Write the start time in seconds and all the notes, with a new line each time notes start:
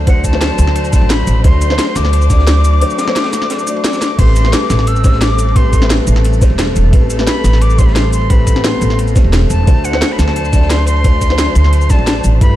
Already playing: D2 F#3 A3 D4 F#4 C5 D5
0.06 A3 D4 F#4 C5 F#5, kick, closed hi-hat, ride
0.24 A5, kick, closed hi-hat, ride, cabasa
0.31 A3 D4 F#4, snare
0.35 C5
0.41 snare, closed hi-hat, ride
0.58 D2, closed hi-hat, ride, cabasa
0.67 snare
0.76 closed hi-hat, ride
0.85 cabasa
0.92 A3 D4 F#4 D5 A5, kick, snare, closed hi-hat, ride, cabasa
1.01 A1, ride
1.10 B5, snare, closed hi-hat, ride
1.27 A1, closed hi-hat, ride, cabasa
1.43 D2 A3 D4 F#4 C5 C6, kick, closed hi-hat, ride
1.61 closed hi-hat, ride, cabasa
1.68 A3 D4 F#4, snare
1.72 C5
1.78 snare, closed hi-hat, ride
1.95 D2 D6, snare, closed hi-hat, ride, cabasa
2.05 snare
2.13 closed hi-hat, ride
2.21 ride, cabasa
2.29 A3 D4 F#4 D5, kick, snare, closed hi-hat, ride, cabasa
2.39 snare
2.47 snare, closed hi-hat, ride
2.64 closed hi-hat, ride, cabasa
2.73 ride
2.80 A3 D4 F#4 C5, closed hi-hat, ride
2.90 cabasa
2.98 snare, closed hi-hat, ride, cabasa
3.06 A3 D4 F#4 C5, snare
3.16 snare, closed hi-hat, ride
3.24 snare, ride
3.33 snare, closed hi-hat, cabasa
3.41 snare, ride
3.50 snare, closed hi-hat, ride
3.59 cabasa
3.66 A3 D4 F#4 D5, closed hi-hat, ride, cabasa
3.76 ride
3.84 D6, snare, closed hi-hat, ride
3.88 snare, ride
3.93 snare, ride, cabasa
4.02 snare, closed hi-hat, cabasa
4.18 A1 G3 A3 C4 G4 A4 B4 C6, kick, closed hi-hat, crash, ride
4.36 closed hi-hat, ride, cabasa
4.42 A3 C4 G4, snare
4.47 B4
4.53 D6, snare, closed hi-hat, ride
4.70 A1, snare, closed hi-hat, ride, cabasa
4.79 snare
4.87 E6, closed hi-hat, ride
4.96 ride, cabasa
5.03 A3 C4 G4 C5, kick, snare, closed hi-hat, ride, cabasa
5.12 snare
5.21 D6, snare, closed hi-hat, ride
5.39 closed hi-hat, ride, cabasa
5.48 ride
5.55 A3 C4 G4 B4 C6, kick, closed hi-hat, ride
5.73 kick, closed hi-hat, ride, cabasa
5.80 A3 C4 G4, snare
5.84 B4
5.90 snare, closed hi-hat, ride
6.07 A1, closed hi-hat, ride, cabasa
6.16 snare
6.25 closed hi-hat, ride
6.33 cabasa
6.41 A3 C4 G4 C5, kick, snare, closed hi-hat, ride, cabasa
6.50 E1, ride
6.59 snare, closed hi-hat, ride
6.76 E1, closed hi-hat, ride, cabasa
6.92 A1 A3 C4 G4 B4, kick, closed hi-hat, ride
7.10 closed hi-hat, ride, cabasa
7.17 A3 C4 G4 B4, snare
7.27 B5, snare, closed hi-hat, ride
7.44 A1, snare, closed hi-hat, ride, cabasa
7.53 snare
7.61 D6, closed hi-hat, ride
7.70 ride, cabasa
7.78 A3 C4 G4 C5 C6, kick, snare, closed hi-hat, ride, cabasa
7.86 B5, snare
7.93 C6, snare, closed hi-hat, ride
8.13 C6, closed hi-hat, ride, cabasa
8.21 ride
8.29 A3 C4 G4 B4 B5, kick, closed hi-hat, ride
8.47 kick, closed hi-hat, ride, cabasa
8.54 A3 C4 G4, snare
8.58 B3
8.64 C6, snare, closed hi-hat, ride
8.81 A1, closed hi-hat, ride, cabasa
8.90 snare
8.99 closed hi-hat, ride
9.08 cabasa
9.15 A3 C4 G4 C5, kick, snare, closed hi-hat, ride, cabasa
9.24 E1, ride
9.33 snare, closed hi-hat, ride
9.50 E1 A5, closed hi-hat, ride, cabasa
9.66 D2 F#3 A3 D4 F#4 C5, kick, closed hi-hat, ride
9.84 F#5, closed hi-hat, ride, cabasa
9.91 A3 D4 F#4, snare
9.95 C5
10.01 snare, closed hi-hat, ride
10.12 B5
10.18 D2 A5, snare, closed hi-hat, ride, cabasa
10.28 snare
10.36 closed hi-hat, ride
10.45 ride, cabasa
10.52 A3 D4 F#4 D5, kick, snare, closed hi-hat, ride, cabasa
10.62 snare
10.69 C6, snare, closed hi-hat, ride
10.87 C6, closed hi-hat, ride, cabasa
10.96 ride
11.03 A3 D4 F#4 C5, kick, closed hi-hat, ride
11.21 kick, closed hi-hat, ride, cabasa
11.28 A3 D4 F#4 C5, snare
11.38 snare, closed hi-hat, ride
11.55 D2, closed hi-hat, ride, cabasa
11.64 snare
11.73 closed hi-hat, ride
11.81 cabasa
11.89 A3 D4 F#4 D5 A5, kick, snare, closed hi-hat, ride, cabasa
11.99 A1, ride
12.07 snare, closed hi-hat, ride
12.24 A1, closed hi-hat, ride, cabasa
12.40 G1 A3 E4 G4 B4 B5, kick, closed hi-hat, ride